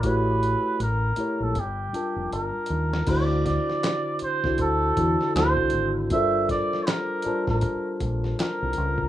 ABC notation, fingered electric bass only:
X:1
M:4/4
L:1/16
Q:"Swing 16ths" 1/4=79
K:Gdor
V:1 name="Fingered electric bass" clef=bass
A,,,3 z A,,,2 z B,,, G,,,2 z F,,, G,,, z _E,,2 | D,,3 z4 C,, D,,2 E,, z D,, C,, _A,,,2 | G,,,3 z4 A,,, z2 B,,,2 z C,, ^C,,2 |]